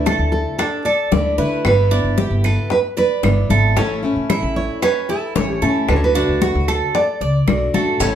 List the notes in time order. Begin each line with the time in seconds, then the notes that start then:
Already playing: D2 A3 D4 E4 B4
0.06 A4, high bongo, high conga, claves
0.19 D2
0.32 A4, high bongo, high conga
0.58 D4 A4, muted steel-string acoustic guitar stroke, high bongo, high conga, claves
0.85 A4 D5, high bongo, high conga
1.12 D2 D3 A3 D4 E4 D5, high bongo, low bongo, high conga
1.38 D3 A3 D4 E4 B4, high bongo, high conga
1.65 G1 G3 B3 E4 B4, high bongo, high conga, claves
1.91 B3 D4 E4, high conga
2.04 G1
2.18 G4, high bongo, high conga
2.31 G1
2.44 A4 B4, high bongo, high conga, claves
2.70 B4, muted steel-string acoustic guitar stroke, high bongo, high conga
2.97 B4 D5, high bongo, high conga
3.23 G1 G3 B3 E4, high bongo, low bongo, high conga, claves
3.50 G#1 B3 E4 A4, high bongo, high conga
3.76 A1 E3 A3 C#4 E4 A4, high bongo, high conga
4.03 A3 C#4 E4, high conga
4.16 A1
4.30 E4, high bongo, high conga, claves
4.42 A1
4.56 C#5, high bongo, high conga
4.82 C#4 B4, muted steel-string acoustic guitar stroke, high bongo, high conga, claves
5.09 E4 A4, high bongo, high conga
5.35 A1 E3 A3 C#4 E4 C#5, high bongo, low bongo, high conga
5.62 A2 A3 C#4 E4 A4, high bongo, high conga
5.88 D2 D3 A3 D4 F#4 B4, high bongo, high conga, claves
5.96 C#5
6.04 B4
6.14 A3 D4 F#4, high conga
6.29 D2
6.42 F#4, high bongo, high conga
6.55 D2
6.68 A4, high bongo, high conga, claves
6.95 D5, muted steel-string acoustic guitar stroke, high bongo, high conga
7.21 C#2 D5, high bongo, high conga
7.47 B1 D3 A3 D4 F#4, high bongo, low bongo, high conga, claves
7.74 A1 A3 D4 F#4 A4, high bongo, high conga
8.00 A1 E3 A3 C#4 E4 A4, high bongo, high conga, maracas